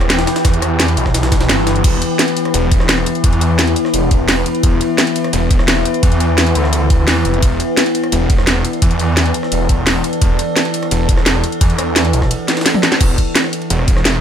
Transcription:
Already playing: E1 E3 B3 E4 G4 B4 G5
0.01 cross-stick, ride
0.10 snare, closed hi-hat, ride
0.19 cross-stick, snare, ride
0.27 snare, closed hi-hat, ride
0.36 snare, closed hi-hat, ride
0.45 E2, kick, snare, closed hi-hat, ride
0.53 closed hi-hat, ride
0.62 cross-stick, closed hi-hat, ride
0.80 snare, closed hi-hat, ride
0.88 closed hi-hat, ride
0.97 B1, closed hi-hat, ride
1.06 kick, cross-stick, snare
1.14 snare, closed hi-hat, ride
1.23 snare, ride
1.32 kick, snare, closed hi-hat, ride
1.41 snare, ride
1.49 G1, snare, closed hi-hat, ride
1.58 snare
1.67 snare, closed hi-hat, ride
1.76 closed hi-hat
1.84 E1 E4, kick, closed hi-hat, ride, crash
1.98 E5, closed hi-hat, ride
2.19 snare, closed hi-hat, ride
2.28 closed hi-hat
2.37 closed hi-hat, ride
2.45 cross-stick, ride
2.54 E1, closed hi-hat, ride
2.71 E1, kick, closed hi-hat, ride
2.80 cross-stick, snare
2.89 snare, closed hi-hat, ride
2.98 cross-stick
3.06 closed hi-hat, ride
3.15 closed hi-hat
3.24 E2, kick, closed hi-hat, ride
3.33 closed hi-hat
3.41 closed hi-hat, ride
3.59 snare, closed hi-hat, ride
3.67 closed hi-hat, ride
3.76 closed hi-hat, ride
3.85 cross-stick, snare
3.94 E1, closed hi-hat, ride
4.11 E1, kick, closed hi-hat, ride
4.28 snare, closed hi-hat, open hi-hat
4.46 closed hi-hat, ride
4.55 closed hi-hat
4.63 E1, kick, closed hi-hat, ride
4.81 closed hi-hat, ride
4.98 snare, closed hi-hat, ride
5.07 closed hi-hat
5.16 closed hi-hat, ride
5.24 cross-stick, ride
5.33 E1, closed hi-hat, ride
5.51 E1, kick, closed hi-hat, ride
5.59 cross-stick, snare
5.68 snare, closed hi-hat, ride
5.77 cross-stick
5.85 closed hi-hat, ride
5.94 closed hi-hat
6.03 E2, kick, closed hi-hat, ride
6.12 closed hi-hat
6.20 closed hi-hat, ride
6.38 snare, closed hi-hat, ride
6.47 closed hi-hat, ride
6.55 D2, closed hi-hat, ride
6.64 cross-stick, snare
6.73 closed hi-hat, ride
6.90 kick, closed hi-hat, ride
7.08 E2, snare, closed hi-hat, open hi-hat
7.25 F1, closed hi-hat, ride
7.34 closed hi-hat
7.42 E1 A4, kick, closed hi-hat, ride
7.56 D5, ride
7.60 closed hi-hat
7.77 snare, closed hi-hat, ride
7.86 closed hi-hat
7.95 closed hi-hat, ride
8.04 cross-stick, ride
8.12 E1, closed hi-hat, ride
8.30 E1, kick, closed hi-hat, ride
8.38 cross-stick, snare
8.47 snare, closed hi-hat, ride
8.56 cross-stick
8.65 closed hi-hat, ride
8.73 closed hi-hat
8.82 E2, kick, closed hi-hat, ride
8.91 closed hi-hat
8.99 closed hi-hat, ride
9.17 snare, closed hi-hat, ride
9.26 closed hi-hat, ride
9.34 closed hi-hat, ride
9.43 cross-stick, snare
9.52 E1, closed hi-hat, ride
9.69 E1, kick, closed hi-hat, ride
9.87 snare, closed hi-hat, open hi-hat
10.04 closed hi-hat, ride
10.13 closed hi-hat
10.21 E1, kick, closed hi-hat, ride
10.39 closed hi-hat, ride
10.56 snare, closed hi-hat, ride
10.65 closed hi-hat
10.74 closed hi-hat, ride
10.83 cross-stick, ride
10.91 E1, closed hi-hat, ride
11.09 E1, kick, closed hi-hat, ride
11.17 cross-stick, snare
11.26 snare, closed hi-hat, ride
11.35 cross-stick
11.44 closed hi-hat, ride
11.52 closed hi-hat
11.61 E2, kick, closed hi-hat, ride
11.70 closed hi-hat
11.78 cross-stick, closed hi-hat, ride
11.96 snare, closed hi-hat, ride
12.05 closed hi-hat, ride
12.13 B1, closed hi-hat, ride
12.22 kick, cross-stick, snare
12.31 closed hi-hat, ride
12.48 snare, closed hi-hat, ride
12.57 snare, ride
12.61 snare, ride
12.66 snare, closed hi-hat, open hi-hat
12.74 mid tom
12.83 snare, closed hi-hat, ride
12.92 snare, closed hi-hat
13.01 E1 E3 B3 E4, kick, closed hi-hat, crash, ride
13.18 B4, kick, closed hi-hat, ride
13.23 E5
13.35 snare, closed hi-hat, ride
13.44 cross-stick
13.53 closed hi-hat, ride
13.62 ride
13.70 E1, closed hi-hat, ride
13.79 cross-stick
13.88 E1, kick, closed hi-hat, ride
13.97 cross-stick, snare
14.05 snare, closed hi-hat, ride

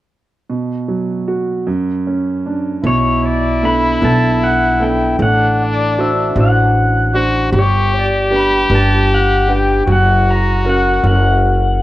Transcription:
0.49 B2
0.88 F#3
1.28 F#4
1.67 F#2
2.07 C#4
2.46 D4
2.84 B1 B2 E4 C#5
3.25 D5
3.62 B3 D4 A4 B5
4.01 B1 B3 D4 A4 A5
4.44 F#5
4.80 B3 D4 A4 G5
5.19 A1 A3 D4 F#5
5.63 D5
5.98 D4 F#4 C5 E5
6.36 A1 D4 F#4 C5
6.40 F#5
7.14 D4 F#4 C5
7.53 G1 G3 G4
7.59 C#5
7.99 D5
8.31 D4 G4 B4
8.36 B5
8.70 G1 D4 G4 B4
8.75 A5
9.14 F#5
9.47 D4 G4 B4
9.52 G5
9.86 F#1 F#3 F#4
9.92 F#5
10.31 A#5
10.65 C#4 F#4 A#4
10.69 F#5
11.03 F#1 C#4 F#4 A#4 F#5

